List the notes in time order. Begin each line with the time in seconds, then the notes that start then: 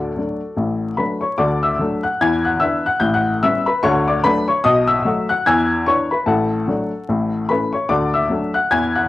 Already playing: D2 D3 F#4 A4 D5
0.17 F#3 A3 D4
0.57 A1 A2
0.97 F#3 A3 D4 B4 B5
1.21 C#5 C#6
1.38 D2 D3 D5 D6
1.63 E5 E6
1.79 F#3 A3 D4
2.03 F#5 F#6
2.21 E2 E3 G#5 G#6
2.45 F#5 F#6
2.60 E3 B3 D4 E5 E6
2.86 F#5 F#6
3.00 A1 A2 G6
3.14 F#5 F#6
3.43 G3 B3 C#4 E5 E6
3.66 B4 B5
3.83 D2 D3 C#5 C#6
4.08 D5 D6
4.24 F#3 A3 D4 B4 B5
4.48 C#5 C#6
4.64 B1 B2 D#5 D#6
4.88 E5 E6
5.05 F#3 A3 F#4
5.29 F#5 F#6
5.46 E2 E3 G#5 E6 G#6
5.86 E3 B3 D4 C#5 C#6
6.11 B4 B5
6.26 A1 A2 A4 F#5 A5
6.68 F#3 A3 D4
7.09 A1 A2
7.49 E3 A3 C#4 B4 B5
7.72 C#5 C#6
7.89 D2 D3 D5 D6
8.14 E5 E6
8.30 F#3 A3 D4
8.54 F#5 F#6
8.71 E2 E3 G#5 G#6
8.95 F#5 F#6